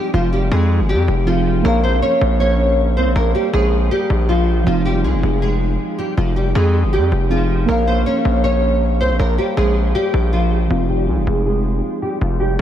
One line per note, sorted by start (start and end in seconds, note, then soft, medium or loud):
0.00 1.21 F3 medium
0.00 1.22 C4 medium
0.00 1.23 D#4 medium
0.00 1.24 F4 medium
0.14 0.50 F1 loud
0.14 0.29 F3 medium
0.14 0.28 F4 medium
0.33 0.48 G3 medium
0.33 0.47 G4 medium
0.52 0.81 F2 loud
0.52 0.87 G#3 medium
0.52 0.87 G#4 loud
0.80 0.96 G1 loud
0.89 1.25 G3 medium
0.89 1.25 G4 medium
0.94 1.07 F2 loud
1.08 1.62 F1 loud
1.25 1.64 F3 medium
1.25 1.63 F3 medium
1.25 1.64 C4 soft
1.25 1.65 D#4 soft
1.25 1.62 F4 medium
1.25 1.65 G#4 medium
1.62 2.01 A#1 loud
1.62 4.61 A#3 medium
1.62 1.80 A#3 medium
1.62 4.62 A#4 medium
1.62 1.79 A#4 medium
1.62 4.63 C#5 medium
1.68 4.64 F5 medium
1.84 1.99 C4 medium
1.84 1.98 C5 medium
2.02 2.38 C#4 medium
2.02 2.38 C#5 loud
2.21 2.98 A#1 loud
2.40 2.94 C#4 medium
2.40 2.93 C#5 medium
2.97 3.08 C2 loud
2.97 3.12 C4 medium
2.97 3.11 C5 medium
3.06 3.15 A#1 loud
3.16 3.34 A#1 loud
3.16 3.31 A#3 medium
3.16 3.30 A#4 medium
3.35 3.50 G3 medium
3.35 3.49 G4 medium
3.53 3.90 A#1 loud
3.53 3.89 G#3 medium
3.53 3.89 G#4 medium
3.91 4.27 G3 medium
3.91 4.27 G4 medium
4.10 4.64 A#1 loud
4.29 4.65 F3 medium
4.29 4.64 F4 medium
4.64 5.06 F1 loud
4.64 7.25 F3 medium
4.64 4.82 F3 medium
4.64 7.26 C4 medium
4.64 4.81 F4 medium
4.68 7.27 D#4 medium
4.68 7.28 F4 medium
4.86 5.01 G3 medium
4.86 5.00 G4 medium
5.04 5.15 C2 loud
5.04 5.40 G#3 medium
5.04 5.40 G#4 loud
5.14 5.23 F1 loud
5.23 5.78 F1 loud
5.42 5.96 G#3 medium
5.42 5.95 G#4 medium
5.99 6.14 G3 medium
5.99 6.13 G4 medium
6.17 6.54 F1 loud
6.17 6.33 F3 medium
6.17 6.32 F4 medium
6.36 6.51 G3 medium
6.36 6.51 G4 medium
6.55 6.85 F2 loud
6.55 6.91 G#3 medium
6.55 6.91 G#4 medium
6.84 6.99 G1 loud
6.93 7.29 G3 medium
6.93 7.28 G4 medium
6.98 7.11 F2 loud
7.12 7.66 F1 loud
7.29 7.68 F3 medium
7.29 7.67 F3 medium
7.29 7.68 C4 soft
7.29 7.69 D#4 soft
7.29 7.66 F4 medium
7.29 7.69 G#4 medium
7.66 8.05 A#1 loud
7.66 10.65 A#3 medium
7.66 7.84 A#3 medium
7.66 10.66 A#4 medium
7.66 7.83 A#4 medium
7.66 10.67 C#5 medium
7.72 10.68 F5 medium
7.88 8.03 C4 medium
7.88 8.02 C5 medium
8.06 8.42 C#4 medium
8.06 8.42 C#5 medium
8.25 9.02 A#1 loud
8.44 8.98 C#4 medium
8.44 8.97 C#5 medium
9.01 9.12 C2 loud
9.01 9.16 C4 medium
9.01 9.15 C5 medium
9.10 9.19 A#1 loud
9.19 9.38 A#1 loud
9.19 9.34 A#3 medium
9.19 9.34 A#4 medium
9.38 9.53 G3 medium
9.38 9.53 G4 medium
9.57 9.93 A#1 loud
9.57 9.93 G#3 medium
9.57 9.93 G#4 medium
9.95 10.31 G3 medium
9.95 10.30 G4 medium
10.14 10.68 A#1 loud
10.33 10.69 F3 medium
10.33 10.68 F4 medium
10.68 11.10 F1 loud
10.68 12.62 F3 medium
10.68 10.85 F3 medium
10.68 12.62 C4 medium
10.68 10.85 F4 medium
10.72 12.62 D#4 medium
10.72 12.62 F4 medium
10.89 11.04 G3 medium
10.89 11.04 G4 medium
11.08 11.19 C2 loud
11.08 11.44 G#3 medium
11.08 11.44 G#4 medium
11.18 11.27 F1 loud
11.27 11.81 F1 loud
11.46 12.00 G#3 medium
11.46 11.99 G#4 medium
12.02 12.17 G3 medium
12.02 12.17 G4 medium
12.21 12.58 F1 loud
12.21 12.36 F3 medium
12.21 12.36 F4 medium
12.40 12.55 G3 medium
12.40 12.55 G4 medium